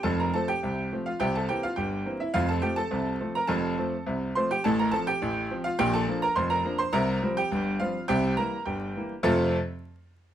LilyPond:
<<
  \new Staff \with { instrumentName = "Grand piano" } { \time 2/4 \key f \major \tempo 4 = 104 <a' a''>16 <bes' bes''>16 <a' a''>16 <g' g''>4 <f' f''>16 | <g' g''>16 <a' a''>16 <g' g''>16 <f' f''>16 <g' g''>8. <e' e''>16 | <f' f''>16 <a' a''>16 <g' g''>16 <a' a''>4 <bes' bes''>16 | <a' a''>4 r8 <c'' c'''>16 <g' g''>16 |
<a' a''>16 <bes' bes''>16 <a' a''>16 <g' g''>4 <f' f''>16 | <g' g''>16 <a' a''>8 <bes' bes''>16 <c'' c'''>16 <bes' bes''>8 <c'' c'''>16 | <bes' bes''>8. <g' g''>8. <f' f''>8 | <g' g''>8 <bes' bes''>8 <g' g''>4 |
<f, c a c' f' a' a''>8 r4. | }
  \new Staff \with { instrumentName = "Grand piano" } { \clef bass \time 2/4 \key f \major <f,, f,>8 <f a c'>8 <c, c>8 <f a c'>8 | <c, c>8 <e bes c'>8 <g,, g,>8 <e bes c'>8 | <f,, f,>8 <f a c'>8 <c, c>8 <f a c'>8 | <f,, f,>8 <f a c'>8 <c, c>8 <f a c'>8 |
<a,, a,>8 <f c'>8 <a,, a,>8 <f c'>8 | <bes,, bes,>8 <f bes d'>8 <f,, f,>8 <f bes d'>8 | <c, c>8 <f g c'>8 <g,, g,>8 <f g c'>8 | <c, c>8 <e g bes>8 <g,, g,>8 <e g bes>8 |
r2 | }
>>